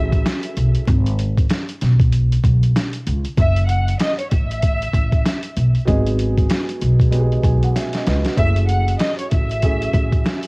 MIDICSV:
0, 0, Header, 1, 5, 480
1, 0, Start_track
1, 0, Tempo, 625000
1, 673, Time_signature, 4, 2, 24, 8
1, 8042, End_track
2, 0, Start_track
2, 0, Title_t, "Violin section"
2, 0, Program_c, 0, 48
2, 0, Note_on_c, 0, 76, 85
2, 309, Note_off_c, 0, 76, 0
2, 2613, Note_on_c, 0, 76, 104
2, 2820, Note_off_c, 0, 76, 0
2, 2822, Note_on_c, 0, 78, 83
2, 3043, Note_off_c, 0, 78, 0
2, 3074, Note_on_c, 0, 75, 91
2, 3203, Note_off_c, 0, 75, 0
2, 3224, Note_on_c, 0, 73, 66
2, 3307, Note_off_c, 0, 73, 0
2, 3307, Note_on_c, 0, 76, 87
2, 4143, Note_off_c, 0, 76, 0
2, 6432, Note_on_c, 0, 76, 108
2, 6648, Note_off_c, 0, 76, 0
2, 6670, Note_on_c, 0, 78, 80
2, 6887, Note_off_c, 0, 78, 0
2, 6909, Note_on_c, 0, 75, 88
2, 7040, Note_off_c, 0, 75, 0
2, 7055, Note_on_c, 0, 73, 77
2, 7142, Note_off_c, 0, 73, 0
2, 7159, Note_on_c, 0, 76, 84
2, 7989, Note_off_c, 0, 76, 0
2, 8042, End_track
3, 0, Start_track
3, 0, Title_t, "Grand piano"
3, 0, Program_c, 1, 0
3, 0, Control_c, 1, 64, 127
3, 0, Note_on_c, 1, 54, 73
3, 0, Note_on_c, 1, 57, 76
3, 0, Note_on_c, 1, 61, 70
3, 0, Note_on_c, 1, 64, 67
3, 0, Note_on_c, 1, 68, 84
3, 387, Note_off_c, 1, 54, 0
3, 389, Note_off_c, 1, 57, 0
3, 392, Note_off_c, 1, 61, 0
3, 395, Note_off_c, 1, 64, 0
3, 397, Note_off_c, 1, 68, 0
3, 684, Control_c, 1, 64, 0
3, 4495, Note_on_c, 1, 54, 97
3, 4500, Note_on_c, 1, 56, 79
3, 4505, Note_on_c, 1, 59, 82
3, 4510, Note_on_c, 1, 63, 88
3, 4515, Note_on_c, 1, 68, 106
3, 4640, Control_c, 1, 64, 127
3, 5182, Note_off_c, 1, 54, 0
3, 5184, Note_off_c, 1, 56, 0
3, 5187, Note_off_c, 1, 59, 0
3, 5190, Note_off_c, 1, 63, 0
3, 5192, Note_off_c, 1, 68, 0
3, 5456, Note_on_c, 1, 54, 89
3, 5462, Note_on_c, 1, 56, 83
3, 5467, Note_on_c, 1, 59, 78
3, 5471, Note_on_c, 1, 63, 85
3, 5477, Note_on_c, 1, 67, 76
3, 5527, Note_on_c, 1, 68, 93
3, 5534, Note_off_c, 1, 67, 0
3, 5708, Note_on_c, 1, 80, 69
3, 5740, Note_off_c, 1, 68, 0
3, 5844, Note_off_c, 1, 80, 0
3, 5866, Note_on_c, 1, 78, 73
3, 5951, Note_off_c, 1, 78, 0
3, 5956, Note_on_c, 1, 76, 77
3, 6103, Note_on_c, 1, 75, 72
3, 6143, Note_off_c, 1, 54, 0
3, 6145, Note_off_c, 1, 56, 0
3, 6148, Note_off_c, 1, 59, 0
3, 6150, Note_off_c, 1, 63, 0
3, 6177, Note_off_c, 1, 76, 0
3, 6183, Note_off_c, 1, 75, 0
3, 6195, Note_on_c, 1, 71, 77
3, 6195, Note_on_c, 1, 75, 73
3, 6329, Note_on_c, 1, 66, 73
3, 6330, Note_off_c, 1, 71, 0
3, 6416, Note_on_c, 1, 54, 76
3, 6417, Note_off_c, 1, 75, 0
3, 6421, Note_on_c, 1, 57, 69
3, 6426, Note_on_c, 1, 61, 68
3, 6431, Note_on_c, 1, 64, 65
3, 6436, Note_on_c, 1, 68, 79
3, 6443, Control_c, 1, 64, 0
3, 6561, Note_off_c, 1, 66, 0
3, 6591, Control_c, 1, 64, 127
3, 7102, Note_off_c, 1, 54, 0
3, 7105, Note_off_c, 1, 57, 0
3, 7108, Note_off_c, 1, 61, 0
3, 7110, Note_off_c, 1, 64, 0
3, 7113, Note_off_c, 1, 68, 0
3, 7385, Note_on_c, 1, 54, 75
3, 7389, Note_on_c, 1, 57, 72
3, 7395, Note_on_c, 1, 61, 70
3, 7400, Note_on_c, 1, 64, 65
3, 7405, Note_on_c, 1, 68, 85
3, 8042, Note_off_c, 1, 54, 0
3, 8042, Note_off_c, 1, 57, 0
3, 8042, Note_off_c, 1, 61, 0
3, 8042, Note_off_c, 1, 64, 0
3, 8042, Note_off_c, 1, 68, 0
3, 8042, End_track
4, 0, Start_track
4, 0, Title_t, "Upright bass"
4, 0, Program_c, 2, 32
4, 0, Note_on_c, 2, 33, 94
4, 164, Note_off_c, 2, 33, 0
4, 437, Note_on_c, 2, 35, 90
4, 562, Note_off_c, 2, 35, 0
4, 674, Note_on_c, 2, 32, 113
4, 1097, Note_off_c, 2, 32, 0
4, 1397, Note_on_c, 2, 35, 97
4, 1819, Note_off_c, 2, 35, 0
4, 1872, Note_on_c, 2, 35, 93
4, 2084, Note_off_c, 2, 35, 0
4, 2357, Note_on_c, 2, 37, 91
4, 2482, Note_off_c, 2, 37, 0
4, 2594, Note_on_c, 2, 30, 101
4, 3017, Note_off_c, 2, 30, 0
4, 3319, Note_on_c, 2, 33, 94
4, 3740, Note_off_c, 2, 33, 0
4, 3792, Note_on_c, 2, 33, 97
4, 4004, Note_off_c, 2, 33, 0
4, 4277, Note_on_c, 2, 35, 91
4, 4402, Note_off_c, 2, 35, 0
4, 4514, Note_on_c, 2, 32, 110
4, 4937, Note_off_c, 2, 32, 0
4, 5237, Note_on_c, 2, 35, 95
4, 5659, Note_off_c, 2, 35, 0
4, 5712, Note_on_c, 2, 35, 95
4, 5924, Note_off_c, 2, 35, 0
4, 6197, Note_on_c, 2, 37, 90
4, 6322, Note_off_c, 2, 37, 0
4, 6434, Note_on_c, 2, 30, 106
4, 6857, Note_off_c, 2, 30, 0
4, 7159, Note_on_c, 2, 33, 96
4, 7580, Note_off_c, 2, 33, 0
4, 7632, Note_on_c, 2, 33, 96
4, 7844, Note_off_c, 2, 33, 0
4, 8042, End_track
5, 0, Start_track
5, 0, Title_t, "Drums"
5, 96, Note_on_c, 9, 36, 91
5, 98, Note_on_c, 9, 42, 47
5, 172, Note_off_c, 9, 36, 0
5, 175, Note_off_c, 9, 42, 0
5, 197, Note_on_c, 9, 40, 90
5, 202, Note_on_c, 9, 38, 115
5, 202, Note_on_c, 9, 42, 93
5, 274, Note_off_c, 9, 40, 0
5, 279, Note_off_c, 9, 38, 0
5, 279, Note_off_c, 9, 42, 0
5, 330, Note_on_c, 9, 42, 65
5, 406, Note_off_c, 9, 42, 0
5, 435, Note_on_c, 9, 42, 75
5, 512, Note_off_c, 9, 42, 0
5, 573, Note_on_c, 9, 42, 46
5, 650, Note_off_c, 9, 42, 0
5, 672, Note_on_c, 9, 36, 118
5, 673, Note_on_c, 9, 42, 92
5, 748, Note_off_c, 9, 36, 0
5, 750, Note_off_c, 9, 42, 0
5, 816, Note_on_c, 9, 42, 58
5, 893, Note_off_c, 9, 42, 0
5, 913, Note_on_c, 9, 42, 69
5, 989, Note_off_c, 9, 42, 0
5, 1056, Note_on_c, 9, 36, 88
5, 1061, Note_on_c, 9, 42, 54
5, 1133, Note_off_c, 9, 36, 0
5, 1138, Note_off_c, 9, 42, 0
5, 1149, Note_on_c, 9, 42, 96
5, 1156, Note_on_c, 9, 40, 94
5, 1161, Note_on_c, 9, 38, 119
5, 1226, Note_off_c, 9, 42, 0
5, 1233, Note_off_c, 9, 40, 0
5, 1237, Note_off_c, 9, 38, 0
5, 1297, Note_on_c, 9, 42, 58
5, 1373, Note_off_c, 9, 42, 0
5, 1393, Note_on_c, 9, 42, 74
5, 1401, Note_on_c, 9, 38, 37
5, 1469, Note_off_c, 9, 42, 0
5, 1478, Note_off_c, 9, 38, 0
5, 1533, Note_on_c, 9, 36, 98
5, 1543, Note_on_c, 9, 42, 53
5, 1609, Note_off_c, 9, 36, 0
5, 1620, Note_off_c, 9, 42, 0
5, 1630, Note_on_c, 9, 42, 96
5, 1707, Note_off_c, 9, 42, 0
5, 1782, Note_on_c, 9, 42, 55
5, 1858, Note_off_c, 9, 42, 0
5, 1870, Note_on_c, 9, 36, 93
5, 1877, Note_on_c, 9, 42, 74
5, 1947, Note_off_c, 9, 36, 0
5, 1954, Note_off_c, 9, 42, 0
5, 2018, Note_on_c, 9, 42, 47
5, 2095, Note_off_c, 9, 42, 0
5, 2118, Note_on_c, 9, 40, 95
5, 2123, Note_on_c, 9, 38, 115
5, 2123, Note_on_c, 9, 42, 94
5, 2195, Note_off_c, 9, 40, 0
5, 2200, Note_off_c, 9, 38, 0
5, 2200, Note_off_c, 9, 42, 0
5, 2250, Note_on_c, 9, 42, 64
5, 2327, Note_off_c, 9, 42, 0
5, 2355, Note_on_c, 9, 42, 77
5, 2432, Note_off_c, 9, 42, 0
5, 2494, Note_on_c, 9, 42, 47
5, 2570, Note_off_c, 9, 42, 0
5, 2592, Note_on_c, 9, 36, 115
5, 2595, Note_on_c, 9, 42, 92
5, 2668, Note_off_c, 9, 36, 0
5, 2671, Note_off_c, 9, 42, 0
5, 2737, Note_on_c, 9, 42, 60
5, 2814, Note_off_c, 9, 42, 0
5, 2833, Note_on_c, 9, 42, 73
5, 2910, Note_off_c, 9, 42, 0
5, 2982, Note_on_c, 9, 42, 53
5, 3059, Note_off_c, 9, 42, 0
5, 3069, Note_on_c, 9, 42, 96
5, 3076, Note_on_c, 9, 40, 94
5, 3081, Note_on_c, 9, 38, 117
5, 3146, Note_off_c, 9, 42, 0
5, 3153, Note_off_c, 9, 40, 0
5, 3158, Note_off_c, 9, 38, 0
5, 3216, Note_on_c, 9, 42, 58
5, 3293, Note_off_c, 9, 42, 0
5, 3313, Note_on_c, 9, 42, 78
5, 3316, Note_on_c, 9, 36, 95
5, 3389, Note_off_c, 9, 42, 0
5, 3393, Note_off_c, 9, 36, 0
5, 3464, Note_on_c, 9, 42, 53
5, 3541, Note_off_c, 9, 42, 0
5, 3551, Note_on_c, 9, 42, 95
5, 3555, Note_on_c, 9, 36, 89
5, 3628, Note_off_c, 9, 42, 0
5, 3632, Note_off_c, 9, 36, 0
5, 3702, Note_on_c, 9, 42, 55
5, 3779, Note_off_c, 9, 42, 0
5, 3790, Note_on_c, 9, 36, 91
5, 3797, Note_on_c, 9, 42, 76
5, 3866, Note_off_c, 9, 36, 0
5, 3873, Note_off_c, 9, 42, 0
5, 3935, Note_on_c, 9, 36, 95
5, 3937, Note_on_c, 9, 42, 47
5, 4012, Note_off_c, 9, 36, 0
5, 4014, Note_off_c, 9, 42, 0
5, 4037, Note_on_c, 9, 40, 93
5, 4041, Note_on_c, 9, 38, 120
5, 4042, Note_on_c, 9, 42, 95
5, 4114, Note_off_c, 9, 40, 0
5, 4118, Note_off_c, 9, 38, 0
5, 4119, Note_off_c, 9, 42, 0
5, 4169, Note_on_c, 9, 42, 65
5, 4246, Note_off_c, 9, 42, 0
5, 4275, Note_on_c, 9, 42, 73
5, 4352, Note_off_c, 9, 42, 0
5, 4414, Note_on_c, 9, 42, 48
5, 4491, Note_off_c, 9, 42, 0
5, 4512, Note_on_c, 9, 36, 115
5, 4514, Note_on_c, 9, 42, 92
5, 4589, Note_off_c, 9, 36, 0
5, 4591, Note_off_c, 9, 42, 0
5, 4657, Note_on_c, 9, 42, 59
5, 4734, Note_off_c, 9, 42, 0
5, 4753, Note_on_c, 9, 42, 69
5, 4830, Note_off_c, 9, 42, 0
5, 4896, Note_on_c, 9, 36, 88
5, 4901, Note_on_c, 9, 42, 53
5, 4973, Note_off_c, 9, 36, 0
5, 4978, Note_off_c, 9, 42, 0
5, 4989, Note_on_c, 9, 42, 92
5, 4996, Note_on_c, 9, 40, 93
5, 5001, Note_on_c, 9, 38, 119
5, 5066, Note_off_c, 9, 42, 0
5, 5073, Note_off_c, 9, 40, 0
5, 5077, Note_off_c, 9, 38, 0
5, 5137, Note_on_c, 9, 42, 56
5, 5214, Note_off_c, 9, 42, 0
5, 5233, Note_on_c, 9, 42, 72
5, 5310, Note_off_c, 9, 42, 0
5, 5373, Note_on_c, 9, 36, 93
5, 5384, Note_on_c, 9, 42, 51
5, 5450, Note_off_c, 9, 36, 0
5, 5461, Note_off_c, 9, 42, 0
5, 5471, Note_on_c, 9, 42, 94
5, 5548, Note_off_c, 9, 42, 0
5, 5622, Note_on_c, 9, 42, 55
5, 5699, Note_off_c, 9, 42, 0
5, 5710, Note_on_c, 9, 36, 93
5, 5717, Note_on_c, 9, 42, 75
5, 5787, Note_off_c, 9, 36, 0
5, 5794, Note_off_c, 9, 42, 0
5, 5858, Note_on_c, 9, 42, 45
5, 5934, Note_off_c, 9, 42, 0
5, 5959, Note_on_c, 9, 38, 62
5, 5962, Note_on_c, 9, 42, 98
5, 6035, Note_off_c, 9, 38, 0
5, 6039, Note_off_c, 9, 42, 0
5, 6089, Note_on_c, 9, 42, 64
5, 6103, Note_on_c, 9, 38, 67
5, 6166, Note_off_c, 9, 42, 0
5, 6180, Note_off_c, 9, 38, 0
5, 6195, Note_on_c, 9, 42, 75
5, 6199, Note_on_c, 9, 38, 91
5, 6272, Note_off_c, 9, 42, 0
5, 6276, Note_off_c, 9, 38, 0
5, 6333, Note_on_c, 9, 42, 47
5, 6343, Note_on_c, 9, 38, 93
5, 6410, Note_off_c, 9, 42, 0
5, 6420, Note_off_c, 9, 38, 0
5, 6432, Note_on_c, 9, 36, 119
5, 6434, Note_on_c, 9, 42, 91
5, 6509, Note_off_c, 9, 36, 0
5, 6510, Note_off_c, 9, 42, 0
5, 6576, Note_on_c, 9, 42, 59
5, 6653, Note_off_c, 9, 42, 0
5, 6673, Note_on_c, 9, 42, 70
5, 6750, Note_off_c, 9, 42, 0
5, 6821, Note_on_c, 9, 42, 54
5, 6898, Note_off_c, 9, 42, 0
5, 6908, Note_on_c, 9, 42, 94
5, 6915, Note_on_c, 9, 40, 93
5, 6920, Note_on_c, 9, 38, 121
5, 6985, Note_off_c, 9, 42, 0
5, 6992, Note_off_c, 9, 40, 0
5, 6997, Note_off_c, 9, 38, 0
5, 7056, Note_on_c, 9, 42, 60
5, 7133, Note_off_c, 9, 42, 0
5, 7153, Note_on_c, 9, 42, 77
5, 7157, Note_on_c, 9, 36, 93
5, 7229, Note_off_c, 9, 42, 0
5, 7233, Note_off_c, 9, 36, 0
5, 7303, Note_on_c, 9, 42, 54
5, 7380, Note_off_c, 9, 42, 0
5, 7391, Note_on_c, 9, 42, 93
5, 7395, Note_on_c, 9, 36, 93
5, 7468, Note_off_c, 9, 42, 0
5, 7472, Note_off_c, 9, 36, 0
5, 7541, Note_on_c, 9, 42, 57
5, 7618, Note_off_c, 9, 42, 0
5, 7630, Note_on_c, 9, 36, 91
5, 7636, Note_on_c, 9, 42, 75
5, 7707, Note_off_c, 9, 36, 0
5, 7713, Note_off_c, 9, 42, 0
5, 7775, Note_on_c, 9, 36, 93
5, 7777, Note_on_c, 9, 42, 46
5, 7852, Note_off_c, 9, 36, 0
5, 7854, Note_off_c, 9, 42, 0
5, 7877, Note_on_c, 9, 40, 91
5, 7882, Note_on_c, 9, 38, 117
5, 7882, Note_on_c, 9, 42, 100
5, 7954, Note_off_c, 9, 40, 0
5, 7958, Note_off_c, 9, 38, 0
5, 7959, Note_off_c, 9, 42, 0
5, 8009, Note_on_c, 9, 42, 64
5, 8042, Note_off_c, 9, 42, 0
5, 8042, End_track
0, 0, End_of_file